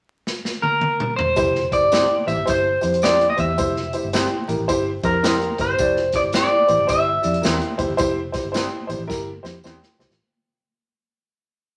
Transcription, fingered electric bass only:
0, 0, Header, 1, 2, 480
1, 0, Start_track
1, 0, Tempo, 551978
1, 1195, Time_signature, 4, 2, 24, 8
1, 10227, End_track
2, 0, Start_track
2, 0, Title_t, "Fingered electric bass"
2, 0, Program_c, 0, 33
2, 1194, Note_on_c, 0, 29, 98
2, 1587, Note_off_c, 0, 29, 0
2, 1587, Note_on_c, 0, 31, 78
2, 1785, Note_off_c, 0, 31, 0
2, 1976, Note_on_c, 0, 33, 81
2, 2051, Note_off_c, 0, 33, 0
2, 2065, Note_on_c, 0, 31, 76
2, 2140, Note_off_c, 0, 31, 0
2, 2153, Note_on_c, 0, 31, 85
2, 2403, Note_off_c, 0, 31, 0
2, 2464, Note_on_c, 0, 41, 95
2, 2858, Note_off_c, 0, 41, 0
2, 2935, Note_on_c, 0, 40, 89
2, 3116, Note_on_c, 0, 29, 95
2, 3129, Note_off_c, 0, 40, 0
2, 3439, Note_off_c, 0, 29, 0
2, 3517, Note_on_c, 0, 31, 92
2, 3712, Note_off_c, 0, 31, 0
2, 3902, Note_on_c, 0, 33, 86
2, 3975, Note_off_c, 0, 33, 0
2, 3996, Note_on_c, 0, 33, 85
2, 4067, Note_off_c, 0, 33, 0
2, 4075, Note_on_c, 0, 31, 87
2, 4324, Note_off_c, 0, 31, 0
2, 4378, Note_on_c, 0, 41, 99
2, 4773, Note_off_c, 0, 41, 0
2, 4853, Note_on_c, 0, 31, 84
2, 5003, Note_off_c, 0, 31, 0
2, 5033, Note_on_c, 0, 29, 98
2, 5424, Note_off_c, 0, 29, 0
2, 5424, Note_on_c, 0, 31, 83
2, 5622, Note_off_c, 0, 31, 0
2, 5819, Note_on_c, 0, 33, 84
2, 5892, Note_off_c, 0, 33, 0
2, 5910, Note_on_c, 0, 31, 83
2, 5982, Note_off_c, 0, 31, 0
2, 5992, Note_on_c, 0, 31, 92
2, 6241, Note_off_c, 0, 31, 0
2, 6303, Note_on_c, 0, 41, 101
2, 6447, Note_off_c, 0, 41, 0
2, 6483, Note_on_c, 0, 40, 102
2, 6603, Note_off_c, 0, 40, 0
2, 6775, Note_on_c, 0, 29, 83
2, 6849, Note_off_c, 0, 29, 0
2, 6862, Note_on_c, 0, 31, 86
2, 6937, Note_off_c, 0, 31, 0
2, 6956, Note_on_c, 0, 29, 99
2, 7275, Note_off_c, 0, 29, 0
2, 7346, Note_on_c, 0, 31, 85
2, 7542, Note_off_c, 0, 31, 0
2, 7731, Note_on_c, 0, 33, 89
2, 7806, Note_off_c, 0, 33, 0
2, 7817, Note_on_c, 0, 33, 79
2, 7893, Note_off_c, 0, 33, 0
2, 7908, Note_on_c, 0, 31, 90
2, 8157, Note_off_c, 0, 31, 0
2, 8211, Note_on_c, 0, 41, 101
2, 8359, Note_off_c, 0, 41, 0
2, 8390, Note_on_c, 0, 40, 97
2, 8515, Note_off_c, 0, 40, 0
2, 8687, Note_on_c, 0, 36, 97
2, 8763, Note_off_c, 0, 36, 0
2, 8782, Note_on_c, 0, 33, 84
2, 8856, Note_off_c, 0, 33, 0
2, 10227, End_track
0, 0, End_of_file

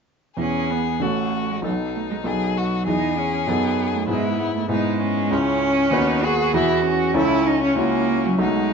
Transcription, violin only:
0, 0, Header, 1, 2, 480
1, 0, Start_track
1, 0, Key_signature, 4, "major"
1, 0, Tempo, 629591
1, 296, Time_signature, 2, 2, 24, 8
1, 1255, Tempo, 613497
1, 6055, Tempo, 632911
1, 6777, End_track
2, 0, Start_track
2, 0, Title_t, "Violin"
2, 0, Program_c, 0, 40
2, 298, Note_on_c, 0, 68, 44
2, 779, Note_on_c, 0, 66, 41
2, 791, Note_off_c, 0, 68, 0
2, 1255, Note_off_c, 0, 66, 0
2, 1260, Note_on_c, 0, 63, 42
2, 1741, Note_on_c, 0, 68, 48
2, 1753, Note_off_c, 0, 63, 0
2, 1985, Note_on_c, 0, 66, 41
2, 1997, Note_off_c, 0, 68, 0
2, 2218, Note_off_c, 0, 66, 0
2, 2223, Note_on_c, 0, 68, 52
2, 3153, Note_off_c, 0, 68, 0
2, 3172, Note_on_c, 0, 64, 53
2, 3637, Note_off_c, 0, 64, 0
2, 3649, Note_on_c, 0, 63, 48
2, 3887, Note_off_c, 0, 63, 0
2, 3893, Note_on_c, 0, 61, 54
2, 4614, Note_on_c, 0, 63, 57
2, 4625, Note_off_c, 0, 61, 0
2, 4853, Note_on_c, 0, 66, 61
2, 4864, Note_off_c, 0, 63, 0
2, 5092, Note_off_c, 0, 66, 0
2, 5097, Note_on_c, 0, 64, 62
2, 5331, Note_off_c, 0, 64, 0
2, 5334, Note_on_c, 0, 61, 61
2, 6508, Note_off_c, 0, 61, 0
2, 6531, Note_on_c, 0, 63, 51
2, 6777, Note_off_c, 0, 63, 0
2, 6777, End_track
0, 0, End_of_file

